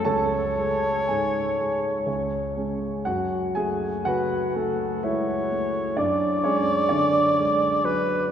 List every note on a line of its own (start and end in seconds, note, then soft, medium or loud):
0.05 2.03 C#2 soft
0.05 1.05 A4 medium
0.05 2.53 C#5 medium
0.05 1.08 A5 medium
0.58 1.39 G#3 soft
1.07 1.88 G#2 soft
1.07 2.03 G#4 soft
1.07 2.07 G#5 soft
1.59 2.07 G#3 soft
2.06 3.03 C#2 soft
2.56 3.02 G#3 soft
2.56 3.03 C#4 soft
3.05 5.95 F#2 soft
3.05 3.53 F#4 soft
3.05 3.55 F#5 medium
3.55 4.36 A3 soft
3.55 4.02 G#4 medium
3.55 4.05 G#5 medium
4.05 4.85 C#3 soft
4.05 5.00 F#4 medium
4.05 4.57 B4 soft
4.05 5.04 F#5 medium
4.56 5.33 A3 soft
4.56 5.05 A4 soft
5.03 5.52 G#3 soft
5.03 5.95 E4 soft
5.03 5.98 C#5 medium
5.03 5.98 E5 medium
5.51 5.98 A3 soft
5.97 8.32 F#2 soft
5.97 6.41 D4 medium
5.97 6.44 D5 medium
5.97 7.86 D5 medium
6.44 7.19 G#3 soft
6.44 6.88 C#4 medium
6.44 6.90 C#5 medium
6.89 7.65 D3 soft
6.89 8.28 D4 soft
6.89 8.31 D5 medium
7.38 8.13 G#3 soft
7.84 8.32 F#3 soft
7.84 8.32 B4 medium